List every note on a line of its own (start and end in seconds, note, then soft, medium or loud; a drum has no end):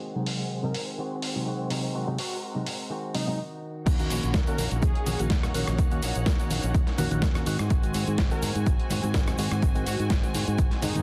0.00 0.98 D#3 medium
0.00 0.98 G#3 medium
0.00 0.98 C4 medium
0.00 3.35 C4 medium
0.00 1.00 F#4 medium
0.00 1.69 G#4 medium
0.00 3.35 F#5 medium
0.15 0.60 C3 medium
0.15 0.60 F#3 medium
0.15 0.60 G#3 medium
0.15 0.61 D#4 medium
0.26 open hi-hat loud
0.63 0.72 C3 medium
0.63 0.72 F#3 medium
0.63 0.72 G#3 medium
0.63 0.72 D#4 medium
0.63 0.81 A#4 medium
0.74 open hi-hat loud
0.98 1.45 D#3 medium
0.98 1.46 G#3 medium
0.98 1.46 C4 medium
0.98 1.48 F#4 medium
1.22 open hi-hat loud
1.35 1.68 C3 medium
1.35 1.68 F#3 medium
1.35 1.68 G#3 medium
1.35 1.68 D#4 medium
1.46 1.94 D#3 medium
1.46 1.93 G#3 medium
1.46 1.94 C4 medium
1.46 1.95 F#4 medium
1.70 2.04 C3 medium
1.70 2.04 F#3 medium
1.70 2.04 G#3 medium
1.70 2.04 D#4 medium
1.70 3.37 A#4 medium
1.70 open hi-hat loud
1.94 2.18 D#3 medium
1.94 2.19 G#3 medium
1.94 2.18 C4 loud
1.94 2.16 F#4 loud
2.07 2.16 C3 medium
2.07 2.16 F#3 medium
2.07 2.16 G#3 medium
2.07 2.16 D#4 medium
2.18 2.90 G#3 soft
2.18 2.90 C4 soft
2.18 2.92 F#4 medium
2.18 2.37 F#4 medium
2.18 open hi-hat loud
2.55 2.64 C3 medium
2.55 2.64 F#3 medium
2.55 2.64 G#3 medium
2.55 2.64 D#4 medium
2.66 open hi-hat loud
2.90 3.86 D#3 medium
2.90 3.39 G#3 medium
2.90 3.39 C4 medium
2.90 3.87 F#4 medium
3.14 3.24 C3 medium
3.14 3.24 F#3 medium
3.14 3.25 G#3 medium
3.14 3.38 D#4 medium
3.14 3.25 D#4 loud
3.14 open hi-hat loud
3.27 3.38 C3 medium
3.27 3.38 F#3 medium
3.27 3.39 G#3 medium
3.27 3.39 D#4 medium
3.86 4.07 D#2 loud
3.86 4.09 D#3 medium
3.86 4.09 A#3 medium
3.86 4.10 C#4 loud
3.86 7.43 D#4 medium
3.86 4.11 F#4 loud
3.86 7.43 C#5 medium
3.86 7.43 F#5 medium
3.86 kick loud
3.86 closed hi-hat medium
3.86 crash loud
3.86 shaker medium
3.99 4.44 D#3 medium
3.99 4.44 A#3 medium
3.99 4.44 C#4 medium
3.99 4.45 F#4 medium
3.99 closed hi-hat soft
3.99 shaker soft
4.10 4.21 A#1 medium
4.10 4.33 D#3 medium
4.10 4.34 A#3 medium
4.10 4.34 C#4 medium
4.10 4.35 F#4 medium
4.10 open hi-hat loud
4.10 shaker medium
4.23 4.33 A#1 medium
4.23 closed hi-hat soft
4.23 shaker soft
4.34 4.45 D#2 medium
4.34 4.47 D#3 medium
4.34 4.48 A#3 loud
4.34 4.47 C#4 loud
4.34 4.46 F#4 loud
4.34 kick loud
4.34 snare loud
4.34 closed hi-hat medium
4.34 shaker medium
4.47 4.56 D#3 medium
4.47 4.56 A#3 medium
4.47 4.57 A#3 medium
4.47 4.56 C#4 medium
4.47 4.58 C#4 medium
4.47 4.58 F#4 medium
4.47 4.56 F#4 loud
4.47 4.65 A#4 medium
4.47 closed hi-hat soft
4.47 shaker soft
4.58 4.69 A#1 medium
4.58 4.71 D#3 medium
4.58 4.72 A#3 medium
4.58 4.71 C#4 medium
4.58 4.70 F#4 medium
4.58 open hi-hat loud
4.58 high conga medium
4.58 shaker medium
4.71 4.81 A#1 medium
4.71 5.05 A#3 medium
4.71 5.06 C#4 medium
4.71 5.06 F#4 medium
4.71 closed hi-hat soft
4.71 shaker soft
4.82 4.93 D#2 medium
4.82 5.20 G#4 loud
4.82 kick loud
4.82 closed hi-hat medium
4.82 shaker medium
4.95 muted fingered electric bass stroke soft
4.95 closed hi-hat soft
5.06 5.17 A#1 medium
5.06 5.29 D#3 medium
5.06 5.29 A#3 medium
5.06 5.30 C#4 medium
5.06 5.30 F#4 medium
5.06 open hi-hat loud
5.06 high conga medium
5.06 shaker loud
5.19 5.29 A#1 medium
5.19 5.52 D#3 medium
5.19 5.52 A#3 medium
5.19 5.52 C#4 medium
5.19 5.52 F#4 medium
5.19 closed hi-hat soft
5.19 shaker soft
5.30 5.41 D#2 medium
5.30 5.52 D#3 medium
5.30 5.55 F#4 loud
5.30 kick loud
5.30 snare loud
5.30 closed hi-hat medium
5.30 shaker medium
5.43 cross-stick medium
5.43 closed hi-hat soft
5.43 low conga medium
5.43 shaker soft
5.54 5.65 A#1 medium
5.54 5.67 D#3 medium
5.54 5.88 D#3 medium
5.54 5.88 A#3 medium
5.54 5.68 A#3 medium
5.54 5.88 C#4 medium
5.54 5.67 C#4 medium
5.54 5.89 F#4 medium
5.54 5.65 F#4 medium
5.54 open hi-hat loud
5.54 shaker loud
5.67 5.77 A#1 medium
5.67 5.77 A#3 medium
5.67 5.78 C#4 medium
5.67 5.78 F#4 medium
5.67 cross-stick medium
5.67 shaker soft
5.78 5.99 D#2 loud
5.78 6.00 D#3 medium
5.78 6.01 A#3 loud
5.78 6.02 C#4 loud
5.78 6.03 F#4 loud
5.78 kick loud
5.78 closed hi-hat medium
5.78 shaker medium
5.91 6.00 D#3 medium
5.91 6.00 A#3 medium
5.91 6.00 C#4 medium
5.91 6.00 F#4 loud
5.91 closed hi-hat soft
5.91 shaker soft
6.02 6.13 A#1 medium
6.02 6.25 D#3 medium
6.02 6.25 A#3 medium
6.02 6.26 C#4 medium
6.02 6.26 F#4 medium
6.02 open hi-hat loud
6.02 shaker medium
6.15 6.25 A#1 medium
6.15 closed hi-hat soft
6.15 shaker soft
6.26 6.39 A#3 medium
6.26 6.39 C#4 medium
6.26 6.37 F#4 loud
6.26 kick loud
6.26 snare loud
6.26 closed hi-hat medium
6.26 shaker medium
6.39 6.48 D#3 medium
6.39 6.48 A#3 medium
6.39 6.49 A#3 medium
6.39 6.48 C#4 medium
6.39 6.50 C#4 medium
6.39 6.50 F#4 medium
6.39 6.48 F#4 medium
6.39 closed hi-hat soft
6.39 shaker soft
6.50 6.62 A#1 medium
6.50 6.63 D#3 medium
6.50 6.64 A#3 medium
6.50 6.63 C#4 medium
6.50 6.62 F#4 medium
6.50 open hi-hat loud
6.50 high conga medium
6.50 shaker loud
6.63 6.73 A#1 medium
6.63 6.97 A#3 medium
6.63 6.98 C#4 medium
6.63 6.98 F#4 medium
6.63 closed hi-hat soft
6.63 shaker soft
6.74 6.85 D#2 medium
6.74 kick loud
6.74 closed hi-hat medium
6.74 shaker medium
6.87 muted fingered electric bass stroke soft
6.87 snare soft
6.87 closed hi-hat soft
6.98 7.09 A#1 loud
6.98 7.21 D#3 medium
6.98 7.08 D#3 loud
6.98 7.08 A#3 medium
6.98 7.22 A#3 medium
6.98 7.08 C#4 medium
6.98 7.22 C#4 medium
6.98 7.09 F#4 loud
6.98 7.23 F#4 medium
6.98 open hi-hat loud
6.98 high conga loud
6.98 shaker medium
7.11 7.21 A#1 medium
7.11 7.25 D#3 medium
7.11 7.25 A#3 medium
7.11 7.26 C#4 medium
7.11 7.26 F#4 medium
7.11 closed hi-hat soft
7.11 high conga medium
7.11 shaker soft
7.22 7.33 D#2 medium
7.22 7.45 D#3 loud
7.22 7.46 A#3 loud
7.22 7.47 C#4 loud
7.22 7.47 F#4 loud
7.22 kick loud
7.22 snare loud
7.22 closed hi-hat medium
7.22 shaker medium
7.35 7.44 D#3 medium
7.35 7.44 A#3 medium
7.35 7.44 C#4 medium
7.35 7.44 F#4 medium
7.35 cross-stick medium
7.35 closed hi-hat soft
7.35 low conga medium
7.35 shaker soft
7.46 7.57 G#2 medium
7.46 7.59 D#3 medium
7.46 7.56 D#3 medium
7.46 7.56 G#3 medium
7.46 7.60 G#3 medium
7.46 7.57 C4 medium
7.46 7.59 C4 medium
7.46 11.02 F#4 medium
7.46 7.57 F#4 loud
7.46 7.57 F#4 medium
7.46 11.02 C5 medium
7.46 11.02 G#5 medium
7.46 open hi-hat loud
7.46 shaker loud
7.59 7.69 G#2 medium
7.59 7.69 G#3 medium
7.59 7.70 C4 medium
7.59 7.70 F#4 medium
7.59 cross-stick medium
7.59 closed hi-hat soft
7.59 shaker soft
7.70 7.91 G#1 loud
7.70 7.93 D#3 medium
7.70 7.93 G#3 loud
7.70 7.94 C4 loud
7.70 7.95 F#4 loud
7.70 kick loud
7.70 closed hi-hat medium
7.70 shaker soft
7.83 8.28 D#3 medium
7.83 8.28 G#3 medium
7.83 8.28 C4 medium
7.83 8.28 F#4 loud
7.83 closed hi-hat soft
7.83 shaker soft
7.94 8.05 G#2 medium
7.94 8.17 D#3 medium
7.94 8.17 G#3 medium
7.94 8.18 C4 medium
7.94 8.18 F#4 medium
7.94 open hi-hat loud
7.94 shaker medium
8.07 8.17 G#2 medium
8.07 closed hi-hat soft
8.07 shaker soft
8.18 8.29 G#1 medium
8.18 8.31 D#3 medium
8.18 8.32 G#3 loud
8.18 8.31 C4 loud
8.18 8.30 F#4 loud
8.18 kick loud
8.18 snare loud
8.18 closed hi-hat medium
8.18 shaker medium
8.31 8.40 D#3 medium
8.31 8.40 G#3 medium
8.31 8.42 G#3 medium
8.31 8.40 C4 medium
8.31 8.42 C4 medium
8.31 8.42 F#4 medium
8.31 8.40 F#4 loud
8.31 8.49 A#4 medium
8.31 closed hi-hat soft
8.31 shaker soft
8.42 8.53 G#2 medium
8.42 8.55 D#3 medium
8.42 8.56 G#3 medium
8.42 8.55 C4 medium
8.42 8.53 F#4 medium
8.42 open hi-hat loud
8.42 high conga medium
8.42 shaker medium
8.55 8.65 G#2 medium
8.55 8.90 G#3 medium
8.55 8.90 C4 medium
8.55 8.90 F#4 medium
8.55 closed hi-hat soft
8.55 shaker soft
8.66 8.77 G#1 medium
8.66 kick loud
8.66 closed hi-hat medium
8.66 shaker soft
8.79 muted fingered electric bass stroke soft
8.79 closed hi-hat soft
8.90 9.01 G#2 medium
8.90 9.13 D#3 medium
8.90 9.14 G#3 medium
8.90 9.14 C4 medium
8.90 9.15 F#4 medium
8.90 open hi-hat loud
8.90 high conga medium
8.90 shaker medium
9.03 9.13 G#2 medium
9.03 9.36 D#3 medium
9.03 9.36 G#3 medium
9.03 9.36 C4 medium
9.03 9.36 F#4 medium
9.03 closed hi-hat soft
9.03 shaker soft
9.14 9.25 G#1 medium
9.14 9.38 G#3 loud
9.14 9.38 C4 loud
9.14 9.39 F#4 loud
9.14 kick loud
9.14 snare loud
9.14 closed hi-hat medium
9.14 shaker medium
9.27 cross-stick medium
9.27 closed hi-hat soft
9.27 low conga medium
9.27 shaker soft
9.38 9.49 G#2 medium
9.38 9.51 D#3 medium
9.38 9.72 D#3 medium
9.38 9.72 G#3 medium
9.38 9.52 G#3 medium
9.38 9.72 C4 medium
9.38 9.51 C4 medium
9.38 9.73 F#4 medium
9.38 9.50 F#4 medium
9.38 open hi-hat loud
9.38 shaker medium
9.51 9.61 G#2 medium
9.51 9.61 G#3 medium
9.51 9.62 C4 medium
9.51 9.62 F#4 medium
9.51 cross-stick medium
9.51 closed hi-hat soft
9.51 shaker soft
9.62 9.83 G#1 loud
9.62 9.84 D#3 loud
9.62 9.86 C4 loud
9.62 9.87 F#4 loud
9.62 kick loud
9.62 closed hi-hat medium
9.62 shaker medium
9.75 9.84 D#3 medium
9.75 9.84 G#3 medium
9.75 9.84 C4 medium
9.75 9.84 F#4 medium
9.75 closed hi-hat soft
9.75 shaker soft
9.86 9.97 G#2 medium
9.86 10.09 D#3 medium
9.86 10.09 G#3 medium
9.86 10.10 C4 medium
9.86 10.05 F#4 medium
9.86 10.10 F#4 medium
9.86 open hi-hat loud
9.86 shaker medium
9.99 10.09 G#2 medium
9.99 closed hi-hat soft
9.99 shaker soft
10.10 10.21 G#1 medium
10.10 10.23 D#3 medium
10.10 10.24 G#3 loud
10.10 10.23 C4 medium
10.10 10.22 F#4 loud
10.10 kick loud
10.10 snare loud
10.10 closed hi-hat medium
10.10 shaker soft
10.23 10.32 D#3 medium
10.23 10.32 G#3 medium
10.23 10.34 G#3 medium
10.23 10.32 C4 medium
10.23 10.34 C4 medium
10.23 10.34 F#4 medium
10.23 10.32 F#4 medium
10.23 closed hi-hat soft
10.23 shaker soft
10.34 10.45 G#2 medium
10.34 10.47 D#3 medium
10.34 10.48 G#3 medium
10.34 10.47 C4 medium
10.34 10.46 F#4 medium
10.34 open hi-hat loud
10.34 high conga medium
10.34 shaker medium
10.47 10.57 G#2 medium
10.47 10.81 G#3 medium
10.47 10.82 C4 medium
10.47 10.82 F#4 medium
10.47 closed hi-hat soft
10.47 shaker soft
10.58 10.69 G#1 medium
10.58 kick loud
10.58 closed hi-hat medium
10.58 shaker medium
10.71 muted fingered electric bass stroke soft
10.71 snare soft
10.71 closed hi-hat soft
10.82 10.93 G#2 loud
10.82 11.02 D#3 medium
10.82 11.02 G#3 medium
10.82 11.02 C4 medium
10.82 11.02 D#4 medium
10.82 11.02 F#4 medium
10.82 open hi-hat loud
10.82 high conga medium
10.82 shaker medium
10.95 11.02 G#2 medium
10.95 closed hi-hat soft
10.95 high conga medium
10.95 shaker soft